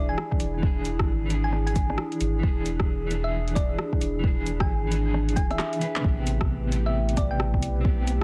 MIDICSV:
0, 0, Header, 1, 6, 480
1, 0, Start_track
1, 0, Tempo, 451128
1, 671, Time_signature, 4, 2, 24, 8
1, 8766, End_track
2, 0, Start_track
2, 0, Title_t, "Synth pluck"
2, 0, Program_c, 0, 84
2, 97, Note_on_c, 0, 80, 93
2, 348, Note_off_c, 0, 80, 0
2, 1534, Note_on_c, 0, 80, 92
2, 1748, Note_off_c, 0, 80, 0
2, 1774, Note_on_c, 0, 80, 94
2, 2108, Note_off_c, 0, 80, 0
2, 3447, Note_on_c, 0, 76, 99
2, 3703, Note_off_c, 0, 76, 0
2, 3780, Note_on_c, 0, 74, 90
2, 3906, Note_off_c, 0, 74, 0
2, 4897, Note_on_c, 0, 80, 88
2, 5229, Note_off_c, 0, 80, 0
2, 5705, Note_on_c, 0, 80, 89
2, 5828, Note_off_c, 0, 80, 0
2, 5861, Note_on_c, 0, 76, 96
2, 6341, Note_off_c, 0, 76, 0
2, 7300, Note_on_c, 0, 76, 92
2, 7550, Note_off_c, 0, 76, 0
2, 7631, Note_on_c, 0, 74, 84
2, 7750, Note_off_c, 0, 74, 0
2, 7775, Note_on_c, 0, 79, 89
2, 8027, Note_off_c, 0, 79, 0
2, 8766, End_track
3, 0, Start_track
3, 0, Title_t, "Ambient pad"
3, 0, Program_c, 1, 92
3, 0, Note_on_c, 1, 62, 87
3, 0, Note_on_c, 1, 64, 80
3, 0, Note_on_c, 1, 68, 99
3, 6385, Note_off_c, 1, 62, 0
3, 6386, Note_off_c, 1, 64, 0
3, 6386, Note_off_c, 1, 68, 0
3, 6435, Note_on_c, 1, 57, 90
3, 6438, Note_on_c, 1, 71, 78
3, 6439, Note_on_c, 1, 64, 76
3, 6440, Note_on_c, 1, 67, 78
3, 8766, Note_off_c, 1, 57, 0
3, 8766, Note_off_c, 1, 64, 0
3, 8766, Note_off_c, 1, 67, 0
3, 8766, Note_off_c, 1, 71, 0
3, 8766, End_track
4, 0, Start_track
4, 0, Title_t, "Clean electric guitar"
4, 0, Program_c, 2, 27
4, 0, Note_on_c, 2, 52, 88
4, 0, Note_on_c, 2, 62, 82
4, 0, Note_on_c, 2, 68, 91
4, 607, Note_off_c, 2, 52, 0
4, 620, Note_on_c, 2, 52, 73
4, 650, Note_off_c, 2, 62, 0
4, 663, Note_on_c, 2, 62, 69
4, 670, Note_off_c, 2, 68, 0
4, 704, Note_on_c, 2, 68, 88
4, 1328, Note_off_c, 2, 52, 0
4, 1340, Note_on_c, 2, 52, 87
4, 1366, Note_off_c, 2, 62, 0
4, 1385, Note_on_c, 2, 62, 77
4, 1386, Note_off_c, 2, 68, 0
4, 1429, Note_on_c, 2, 68, 97
4, 2532, Note_off_c, 2, 52, 0
4, 2545, Note_on_c, 2, 52, 75
4, 2567, Note_off_c, 2, 62, 0
4, 2588, Note_off_c, 2, 68, 0
4, 2590, Note_on_c, 2, 62, 72
4, 2629, Note_on_c, 2, 68, 83
4, 3252, Note_off_c, 2, 52, 0
4, 3265, Note_on_c, 2, 52, 92
4, 3289, Note_off_c, 2, 62, 0
4, 3308, Note_off_c, 2, 68, 0
4, 3311, Note_on_c, 2, 62, 80
4, 3351, Note_on_c, 2, 68, 101
4, 4447, Note_off_c, 2, 52, 0
4, 4460, Note_on_c, 2, 52, 77
4, 4490, Note_off_c, 2, 62, 0
4, 4504, Note_on_c, 2, 62, 72
4, 4510, Note_off_c, 2, 68, 0
4, 4545, Note_on_c, 2, 68, 86
4, 5171, Note_off_c, 2, 52, 0
4, 5183, Note_on_c, 2, 52, 85
4, 5206, Note_off_c, 2, 62, 0
4, 5224, Note_on_c, 2, 62, 83
4, 5226, Note_off_c, 2, 68, 0
4, 5267, Note_on_c, 2, 68, 96
4, 6149, Note_off_c, 2, 52, 0
4, 6165, Note_on_c, 2, 52, 79
4, 6169, Note_off_c, 2, 62, 0
4, 6189, Note_on_c, 2, 62, 76
4, 6191, Note_off_c, 2, 68, 0
4, 6206, Note_on_c, 2, 71, 91
4, 6382, Note_off_c, 2, 52, 0
4, 6387, Note_on_c, 2, 48, 80
4, 6409, Note_off_c, 2, 62, 0
4, 6417, Note_off_c, 2, 71, 0
4, 6430, Note_on_c, 2, 59, 66
4, 6474, Note_on_c, 2, 67, 82
4, 7095, Note_off_c, 2, 48, 0
4, 7108, Note_on_c, 2, 48, 87
4, 7129, Note_off_c, 2, 59, 0
4, 7150, Note_on_c, 2, 59, 81
4, 7151, Note_off_c, 2, 67, 0
4, 7193, Note_on_c, 2, 67, 94
4, 8308, Note_off_c, 2, 48, 0
4, 8309, Note_on_c, 2, 60, 74
4, 8329, Note_off_c, 2, 59, 0
4, 8350, Note_off_c, 2, 67, 0
4, 8351, Note_on_c, 2, 59, 69
4, 8393, Note_on_c, 2, 67, 87
4, 8766, Note_off_c, 2, 59, 0
4, 8766, Note_off_c, 2, 60, 0
4, 8766, Note_off_c, 2, 67, 0
4, 8766, End_track
5, 0, Start_track
5, 0, Title_t, "Sub bass"
5, 0, Program_c, 3, 38
5, 0, Note_on_c, 3, 28, 100
5, 179, Note_off_c, 3, 28, 0
5, 429, Note_on_c, 3, 28, 92
5, 1060, Note_on_c, 3, 32, 105
5, 1076, Note_off_c, 3, 28, 0
5, 2099, Note_off_c, 3, 32, 0
5, 2347, Note_on_c, 3, 32, 103
5, 2575, Note_off_c, 3, 32, 0
5, 2589, Note_on_c, 3, 28, 99
5, 4018, Note_off_c, 3, 28, 0
5, 4264, Note_on_c, 3, 28, 94
5, 4900, Note_on_c, 3, 32, 103
5, 4916, Note_off_c, 3, 28, 0
5, 5706, Note_off_c, 3, 32, 0
5, 5712, Note_on_c, 3, 28, 98
5, 5857, Note_on_c, 3, 26, 85
5, 5873, Note_off_c, 3, 28, 0
5, 5950, Note_off_c, 3, 26, 0
5, 6432, Note_on_c, 3, 33, 96
5, 8110, Note_on_c, 3, 35, 88
5, 8126, Note_off_c, 3, 33, 0
5, 8758, Note_off_c, 3, 35, 0
5, 8766, End_track
6, 0, Start_track
6, 0, Title_t, "Drums"
6, 190, Note_on_c, 9, 37, 105
6, 297, Note_off_c, 9, 37, 0
6, 336, Note_on_c, 9, 37, 36
6, 341, Note_on_c, 9, 36, 63
6, 426, Note_on_c, 9, 42, 57
6, 426, Note_on_c, 9, 69, 66
6, 443, Note_off_c, 9, 37, 0
6, 447, Note_off_c, 9, 36, 0
6, 532, Note_off_c, 9, 42, 0
6, 532, Note_off_c, 9, 69, 0
6, 671, Note_on_c, 9, 36, 114
6, 778, Note_off_c, 9, 36, 0
6, 906, Note_on_c, 9, 42, 55
6, 906, Note_on_c, 9, 69, 84
6, 1013, Note_off_c, 9, 42, 0
6, 1013, Note_off_c, 9, 69, 0
6, 1059, Note_on_c, 9, 37, 104
6, 1060, Note_on_c, 9, 36, 102
6, 1165, Note_off_c, 9, 37, 0
6, 1167, Note_off_c, 9, 36, 0
6, 1387, Note_on_c, 9, 42, 54
6, 1387, Note_on_c, 9, 69, 64
6, 1493, Note_off_c, 9, 42, 0
6, 1493, Note_off_c, 9, 69, 0
6, 1626, Note_on_c, 9, 37, 51
6, 1732, Note_off_c, 9, 37, 0
6, 1779, Note_on_c, 9, 42, 30
6, 1871, Note_off_c, 9, 42, 0
6, 1871, Note_on_c, 9, 36, 106
6, 1871, Note_on_c, 9, 42, 52
6, 1871, Note_on_c, 9, 69, 77
6, 1977, Note_off_c, 9, 36, 0
6, 1977, Note_off_c, 9, 42, 0
6, 1977, Note_off_c, 9, 69, 0
6, 2021, Note_on_c, 9, 37, 58
6, 2105, Note_off_c, 9, 37, 0
6, 2105, Note_on_c, 9, 37, 106
6, 2212, Note_off_c, 9, 37, 0
6, 2256, Note_on_c, 9, 42, 28
6, 2347, Note_off_c, 9, 42, 0
6, 2347, Note_on_c, 9, 42, 58
6, 2347, Note_on_c, 9, 69, 68
6, 2454, Note_off_c, 9, 42, 0
6, 2454, Note_off_c, 9, 69, 0
6, 2589, Note_on_c, 9, 36, 113
6, 2696, Note_off_c, 9, 36, 0
6, 2827, Note_on_c, 9, 42, 59
6, 2827, Note_on_c, 9, 69, 81
6, 2933, Note_off_c, 9, 42, 0
6, 2933, Note_off_c, 9, 69, 0
6, 2974, Note_on_c, 9, 37, 95
6, 2979, Note_on_c, 9, 36, 98
6, 3080, Note_off_c, 9, 37, 0
6, 3085, Note_off_c, 9, 36, 0
6, 3306, Note_on_c, 9, 42, 53
6, 3306, Note_on_c, 9, 69, 69
6, 3413, Note_off_c, 9, 42, 0
6, 3413, Note_off_c, 9, 69, 0
6, 3698, Note_on_c, 9, 42, 32
6, 3788, Note_on_c, 9, 36, 106
6, 3791, Note_off_c, 9, 42, 0
6, 3791, Note_on_c, 9, 37, 55
6, 3791, Note_on_c, 9, 42, 54
6, 3791, Note_on_c, 9, 69, 81
6, 3895, Note_off_c, 9, 36, 0
6, 3897, Note_off_c, 9, 37, 0
6, 3897, Note_off_c, 9, 42, 0
6, 3897, Note_off_c, 9, 69, 0
6, 4027, Note_on_c, 9, 37, 102
6, 4134, Note_off_c, 9, 37, 0
6, 4178, Note_on_c, 9, 36, 56
6, 4179, Note_on_c, 9, 37, 37
6, 4270, Note_on_c, 9, 42, 57
6, 4270, Note_on_c, 9, 69, 71
6, 4284, Note_off_c, 9, 36, 0
6, 4286, Note_off_c, 9, 37, 0
6, 4376, Note_off_c, 9, 42, 0
6, 4376, Note_off_c, 9, 69, 0
6, 4508, Note_on_c, 9, 36, 119
6, 4615, Note_off_c, 9, 36, 0
6, 4749, Note_on_c, 9, 42, 59
6, 4749, Note_on_c, 9, 69, 75
6, 4855, Note_off_c, 9, 42, 0
6, 4855, Note_off_c, 9, 69, 0
6, 4895, Note_on_c, 9, 37, 105
6, 4898, Note_on_c, 9, 36, 106
6, 5001, Note_off_c, 9, 37, 0
6, 5004, Note_off_c, 9, 36, 0
6, 5230, Note_on_c, 9, 42, 57
6, 5230, Note_on_c, 9, 69, 67
6, 5336, Note_off_c, 9, 42, 0
6, 5336, Note_off_c, 9, 69, 0
6, 5472, Note_on_c, 9, 37, 55
6, 5578, Note_off_c, 9, 37, 0
6, 5625, Note_on_c, 9, 42, 31
6, 5710, Note_off_c, 9, 42, 0
6, 5710, Note_on_c, 9, 42, 58
6, 5710, Note_on_c, 9, 69, 78
6, 5711, Note_on_c, 9, 36, 107
6, 5817, Note_off_c, 9, 36, 0
6, 5817, Note_off_c, 9, 42, 0
6, 5817, Note_off_c, 9, 69, 0
6, 5859, Note_on_c, 9, 37, 64
6, 5859, Note_on_c, 9, 42, 31
6, 5949, Note_off_c, 9, 37, 0
6, 5949, Note_on_c, 9, 37, 107
6, 5949, Note_on_c, 9, 39, 105
6, 5965, Note_off_c, 9, 42, 0
6, 6055, Note_off_c, 9, 37, 0
6, 6055, Note_off_c, 9, 39, 0
6, 6097, Note_on_c, 9, 42, 31
6, 6187, Note_off_c, 9, 42, 0
6, 6187, Note_on_c, 9, 42, 58
6, 6187, Note_on_c, 9, 69, 68
6, 6294, Note_off_c, 9, 42, 0
6, 6294, Note_off_c, 9, 69, 0
6, 6340, Note_on_c, 9, 39, 85
6, 6432, Note_on_c, 9, 36, 115
6, 6446, Note_off_c, 9, 39, 0
6, 6539, Note_off_c, 9, 36, 0
6, 6669, Note_on_c, 9, 42, 61
6, 6669, Note_on_c, 9, 69, 78
6, 6776, Note_off_c, 9, 42, 0
6, 6776, Note_off_c, 9, 69, 0
6, 6818, Note_on_c, 9, 37, 100
6, 6822, Note_on_c, 9, 36, 101
6, 6925, Note_off_c, 9, 37, 0
6, 6928, Note_off_c, 9, 36, 0
6, 7151, Note_on_c, 9, 42, 59
6, 7151, Note_on_c, 9, 69, 68
6, 7257, Note_off_c, 9, 42, 0
6, 7257, Note_off_c, 9, 69, 0
6, 7541, Note_on_c, 9, 42, 34
6, 7630, Note_off_c, 9, 42, 0
6, 7630, Note_on_c, 9, 37, 56
6, 7630, Note_on_c, 9, 42, 59
6, 7630, Note_on_c, 9, 69, 72
6, 7633, Note_on_c, 9, 36, 108
6, 7736, Note_off_c, 9, 37, 0
6, 7736, Note_off_c, 9, 42, 0
6, 7736, Note_off_c, 9, 69, 0
6, 7739, Note_off_c, 9, 36, 0
6, 7871, Note_on_c, 9, 37, 109
6, 7977, Note_off_c, 9, 37, 0
6, 8022, Note_on_c, 9, 36, 61
6, 8024, Note_on_c, 9, 37, 38
6, 8114, Note_on_c, 9, 42, 58
6, 8114, Note_on_c, 9, 69, 64
6, 8128, Note_off_c, 9, 36, 0
6, 8131, Note_off_c, 9, 37, 0
6, 8220, Note_off_c, 9, 42, 0
6, 8220, Note_off_c, 9, 69, 0
6, 8352, Note_on_c, 9, 36, 127
6, 8459, Note_off_c, 9, 36, 0
6, 8592, Note_on_c, 9, 42, 60
6, 8592, Note_on_c, 9, 69, 70
6, 8698, Note_off_c, 9, 42, 0
6, 8698, Note_off_c, 9, 69, 0
6, 8766, End_track
0, 0, End_of_file